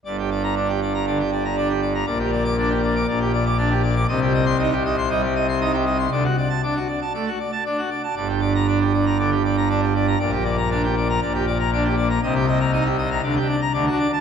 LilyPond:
<<
  \new Staff \with { instrumentName = "Pipe organ" } { \time 4/4 \key g \minor \tempo 4 = 119 d''16 g'16 d''16 bes''16 d''16 g'16 d''16 bes''16 d''16 g'16 d''16 bes''16 d''16 g'16 d''16 bes''16 | d''16 g'16 d''16 d'''16 d''16 g'16 d''16 d'''16 d''16 g'16 d''16 d'''16 d''16 g'16 d''16 d'''16 | ees''16 g'16 ees''16 c'''16 ees''16 g'16 ees''16 c'''16 ees''16 g'16 ees''16 c'''16 ees''16 g'16 ees''16 c'''16 | d''16 fis'16 d''16 a''16 d''16 fis'16 d''16 a''16 d''16 fis'16 d''16 a''16 d''16 fis'16 d''16 a''16 |
d''16 g'16 d''16 bes''16 d''16 g'16 d''16 bes''16 d''16 g'16 d''16 bes''16 d''16 g'16 d''16 bes''16 | d''16 g'16 d''16 bes''16 d''16 g'16 d''16 bes''16 d''16 g'16 d''16 bes''16 d''16 g'16 d''16 bes''16 | ees''16 g'16 ees''16 bes''16 ees''16 g'16 ees''16 bes''16 d''16 g'16 d''16 bes''16 d''16 fis'16 d''16 a''16 | }
  \new Staff \with { instrumentName = "Pipe organ" } { \clef bass \time 4/4 \key g \minor << { g,4 d'8 r8 d8 r8 d'8 r8 | bes,4 d'8 r8 bes,4 d'8 r8 | c4 ees'8 r8 g8 r8 ees'8 r8 | d8 r8 d'8 r8 a8 r8 d'8 r8 |
g,4 d'8 r8 d8 r8 d'8 r8 | bes,4 d'8 r8 bes,4 d'8 r8 | c4 ees'8 r8 \tuplet 3/2 { d8 d'8 r8 d8 d'8 r8 } | } \\ { g,,1 | bes,,2 bes,,2 | c,1 | d,8 r2. r8 |
g,,1 | bes,,2 bes,,2 | c,2 d,8 r8 d,8 r8 | } >> }
>>